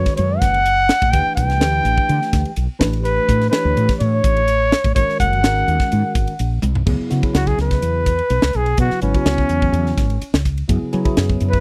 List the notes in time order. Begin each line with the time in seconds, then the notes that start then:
Already playing: D#3 G#3 C#4 F#4 B4 C#5
0.06 kick, snare, ride
0.17 F#2 C#5, hi-hat pedal, ride
0.39 F#1 F#5, kick, snare, hi-hat pedal, ride
0.54 ride
0.66 hi-hat pedal, ride
0.89 snare, hi-hat pedal, ride
1.02 A1, kick, ride
1.11 D2 E3 A3 D4 G4 B4 G5, kick, hi-hat pedal, ride
1.26 muted fretless electric bass stroke
1.35 C2 G5, kick, hi-hat pedal, ride
1.50 snare, ride
1.60 D2 E3 A3 D4 G4 B4, snare, hi-hat pedal, ride
1.84 A1, hi-hat pedal, ride
1.98 kick
2.09 D3, hi-hat pedal, ride
2.22 snare
2.33 D2, kick, snare, hi-hat pedal, ride
2.45 ride
2.56 B1, hi-hat pedal, ride
2.79 A1 E3 A3 D4 G4 B4, kick, snare, hi-hat pedal, ride
2.93 ride
3.04 B4, hi-hat pedal, ride
3.29 A2, kick, hi-hat pedal, ride
3.41 snare, ride
3.50 E3 A3 D4 G4 B4 C#5, snare, hi-hat pedal, ride
3.65 D2
3.77 A2, hi-hat pedal, ride
3.89 kick, snare, ride
4.00 A2 C#5, hi-hat pedal, ride
4.24 A1, kick, hi-hat pedal, ride
4.37 ride
4.48 hi-hat pedal, ride
4.72 snare, hi-hat pedal, ride
4.84 A1, kick, ride
4.95 G#1 D#3 G#3 C#4 F#4 A#4 C#5, kick, hi-hat pedal, ride
5.09 snare
5.20 F#1 F#5, kick, hi-hat pedal, ride
5.33 ride
5.43 G#1 D#3 G#3 C#4 F#4 A#4, snare, hi-hat pedal, ride
5.68 D#2, hi-hat pedal, ride
5.80 kick, snare
5.92 G#2, hi-hat pedal, ride
6.15 G#1, kick, hi-hat pedal, ride
6.27 ride
6.39 A#1, hi-hat pedal, ride
6.62 C2, hi-hat pedal, high tom
6.75 floor tom
6.86 C#2 C#3 F#3 B3 E4 G#4, kick, crash
7.00 muted fretless electric bass stroke
7.10 C#3 F#3 B3 E4 F#4, snare, hi-hat pedal, ride
7.22 C#3 F#3 B3 E4 G#4, kick, ride
7.34 C#2 F#4, snare, hi-hat pedal, ride
7.47 G#4, kick
7.58 C#2 B4, snare, hi-hat pedal, ride
7.71 kick, snare, ride
7.82 E2, hi-hat pedal, ride
8.06 kick, hi-hat pedal, ride
8.19 ride
8.30 B1, hi-hat pedal, ride
8.42 C#2, snare
8.53 B1 G#4, hi-hat pedal, ride
8.66 ride
8.77 B2 C#3 F#3 B3 E4 F#4 B4, kick, hi-hat pedal, ride
8.90 muted fretless electric bass stroke, snare
9.02 G#1 C#3 F#3 B3 C#4 E4 B4, hi-hat pedal, ride
9.14 C#3 F#3 B3 E4 F#4, kick, ride
9.25 C#2, snare, hi-hat pedal, ride
9.38 kick
9.49 E2, hi-hat pedal, ride
9.62 kick, ride
9.72 E2, hi-hat pedal, ride
9.86 snare
9.98 G#1, kick, snare, hi-hat pedal, ride
10.10 ride
10.21 hi-hat pedal, ride
10.33 C#2, snare
10.45 kick, hi-hat pedal, ride
10.58 ride
10.68 F#2 C#3 F#3 B3 E4 G#4, kick, hi-hat pedal, ride
10.82 muted fretless electric bass stroke
10.92 C#3 F#3 B3 E4 G#4, hi-hat pedal, ride
11.05 C#3 F#3 B3 E4 G#4, muted fretless electric bass stroke, kick, ride
11.17 F#2, snare, hi-hat pedal, ride
11.29 kick
11.40 F#2, hi-hat pedal, ride
11.50 B4, kick, ride